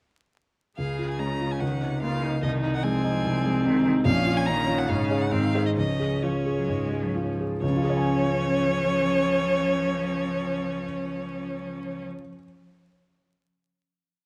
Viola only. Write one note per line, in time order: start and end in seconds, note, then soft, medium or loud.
0.78 1.21 G#4 soft
1.19 2.02 C#4 soft
2.02 2.24 F4 soft
2.22 2.42 D#4 soft
2.42 2.85 D#4 soft
2.84 4.05 C4 medium
4.06 4.88 C#4 medium
4.90 5.31 C#4 medium
5.32 5.76 C4 soft
5.77 7.37 C#4 soft
7.63 12.05 C#4 medium